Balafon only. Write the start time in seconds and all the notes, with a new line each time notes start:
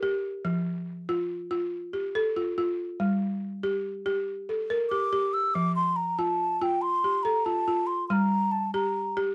0.03 G4
0.45 F3
1.09 F4
1.51 F4
1.93 G4
2.15 A4
2.36 F4
2.58 F4
3.00 G3
3.63 G4
4.06 G4
4.49 A4
4.70 A#4
4.92 G4
5.13 G4
5.55 F3
6.19 F4
6.61 F4
7.04 G4
7.25 A4
7.46 F4
7.68 F4
8.10 G3
8.74 G4
9.17 G4